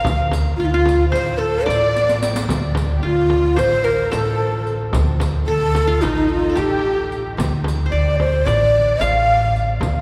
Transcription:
Already playing: A#4 F5
0.04 D2, riq, frame drum
0.31 riq, frame drum
0.57 D2 F4
0.62 D#4, riq
0.70 F4
0.74 F4
0.86 riq, frame drum
1.09 C5, frame drum
1.14 A1 C5, riq
1.38 A4
1.65 A1 D5, frame drum
1.70 riq
1.96 riq
2.09 riq
2.22 riq
2.36 riq
2.49 D2, riq, frame drum
2.75 riq, frame drum
2.96 G4
3.03 D2 F4
3.30 frame drum
3.56 A1 C5, riq, frame drum
3.84 A#4
4.05 A#4
4.11 A1 A4, riq, frame drum
4.67 riq
4.93 D2, riq, frame drum
5.20 riq, frame drum
5.47 D2 A4
5.75 riq, frame drum
5.87 F4
6.02 A1 D#4, riq, frame drum
6.29 F4
6.50 A4
6.55 A1 G4, riq, frame drum
7.12 riq
7.37 D2, riq, frame drum
7.64 riq, frame drum
7.86 C5
7.91 D2 D5
8.19 C5, frame drum
8.45 A1 D5, riq, frame drum
9.00 A1 F5, riq, frame drum
9.56 riq
9.80 D2, riq, frame drum

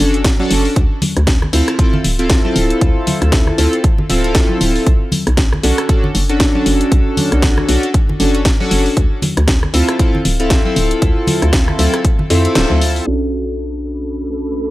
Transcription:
0.00 F#1 C#4 D4 F#4 A4
0.14 closed hi-hat
0.24 B1, kick, snare, closed hi-hat
0.39 C#4 D4 F#4 A4, high conga
0.51 F#1, open hi-hat
0.65 open hi-hat
0.76 D2, kick, closed hi-hat
1.02 open hi-hat, high conga, low conga
1.17 D2, cross-stick, closed hi-hat
1.27 kick, snare, closed hi-hat
1.42 cross-stick, low conga
1.53 D2 C4 E4 F4 A4, open hi-hat
1.68 cross-stick, closed hi-hat
1.79 C4 E4 F4 A4, kick, closed hi-hat
1.94 low conga
2.04 D1, open hi-hat
2.19 C4 E4 F4 A4, closed hi-hat
2.30 D2, kick, snare, closed hi-hat
2.45 C4 E4 F4 A4, high conga
2.56 D1, open hi-hat
2.70 closed hi-hat
2.81 D2, kick, closed hi-hat
3.07 open hi-hat, high conga, low conga
3.22 D2, cross-stick, closed hi-hat
3.32 kick, snare, closed hi-hat
3.47 cross-stick, low conga
3.58 D2 C4 E4 F4 A4, open hi-hat
3.73 closed hi-hat
3.84 kick, closed hi-hat
3.98 low conga
4.10 D1 C4 E4 F4 A4, open hi-hat
4.24 C4 E4 F4 A4, closed hi-hat
4.35 D2, kick, snare, closed hi-hat
4.49 high conga
4.61 D1, open hi-hat
4.76 open hi-hat
4.86 B1, kick, closed hi-hat
5.12 open hi-hat, high conga, low conga
5.27 B1, cross-stick, closed hi-hat
5.37 kick, snare, closed hi-hat
5.53 cross-stick, low conga
5.63 B1 C#4 D4 F#4 A4, open hi-hat
5.78 cross-stick, closed hi-hat
5.89 C#4 D4 F#4 A4, kick, closed hi-hat
6.04 low conga
6.15 F#1, open hi-hat
6.29 C#4 D4 F#4 A4, closed hi-hat
6.40 B1, kick, snare, closed hi-hat
6.55 C#4 D4 F#4 A4, high conga
6.66 F#1, open hi-hat
6.81 closed hi-hat
6.92 B1, kick, closed hi-hat
7.17 open hi-hat, high conga, low conga
7.32 B1, cross-stick, closed hi-hat
7.42 kick, snare, closed hi-hat
7.57 cross-stick, low conga
7.69 B1 C#4 D4 F#4 A4, open hi-hat
7.83 closed hi-hat
7.94 kick, closed hi-hat
8.09 low conga
8.20 F#1 C#4 D4 F#4 A4, open hi-hat
8.35 closed hi-hat
8.45 B1, kick, snare, closed hi-hat
8.60 C#4 D4 F#4 A4, high conga
8.71 F#1, open hi-hat
8.86 open hi-hat
8.97 D2, kick, closed hi-hat
9.22 open hi-hat, high conga, low conga
9.37 D2, cross-stick, closed hi-hat
9.48 kick, snare, closed hi-hat
9.63 cross-stick, low conga
9.74 D2 C4 E4 F4 A4, open hi-hat
9.89 cross-stick, closed hi-hat
9.99 C4 E4 F4 A4, kick, closed hi-hat
10.15 low conga
10.25 D1, open hi-hat
10.40 C4 E4 F4 A4, closed hi-hat
10.50 D2, kick, snare, closed hi-hat
10.65 C4 E4 F4 A4, high conga
10.76 D1, open hi-hat
10.91 closed hi-hat
11.02 D2, kick, closed hi-hat
11.27 open hi-hat, high conga, low conga
11.42 D2, cross-stick, closed hi-hat
11.53 kick, snare, closed hi-hat
11.68 cross-stick, low conga
11.79 D2 C4 E4 F4 A4, open hi-hat, high conga
11.94 cross-stick, closed hi-hat
12.05 kick, closed hi-hat
12.19 low conga
12.30 F2 C4 E4 F4 A4, open hi-hat
12.45 C4 E4 F4 A4, closed hi-hat
12.55 D1, snare, closed hi-hat
12.70 D2, high conga
12.82 open hi-hat
12.96 open hi-hat
13.07 B1 C#4 D4 F#4 A4
13.31 B5 D6

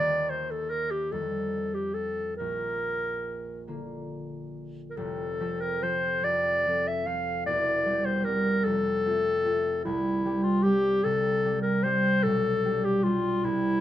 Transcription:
Already playing: D#2 D#3 A#3 G4 D5
0.30 C5
0.51 A4
0.70 A#4
0.91 G4
1.12 F2 D#3 G3 F4 A4
1.74 G4
1.94 A4
2.37 A#1 A#4
3.68 D3 A#3 F4
4.90 A#4
4.97 F1 F2 A4
5.40 F3 C4 A4
5.61 A#4
5.82 F3 C4 A4 C5
6.24 F1 F2 D5
6.66 F3 C4 A4
6.87 E5
7.06 F3 C4 A4 F5
7.46 E1 E2 D5
7.86 G3 C4 G4
8.05 C5
8.24 G3 C4 A#4
8.29 G4
8.65 F1 F2 A4
9.06 A3 C4 F4
9.46 A3 C4 F4
9.84 C2 C3 E4
10.25 G3 C4 G4
10.43 F4
10.63 G3 C4 G4
11.04 C2 C3 A4
11.45 G3 C4 G4
11.62 A#4
11.83 G3 C4 G4 C5
12.23 B1 B2 A4
12.65 G3 D4 G4
12.84 G4
13.03 G3 D4 F4 G4
13.44 C2 C3 E4

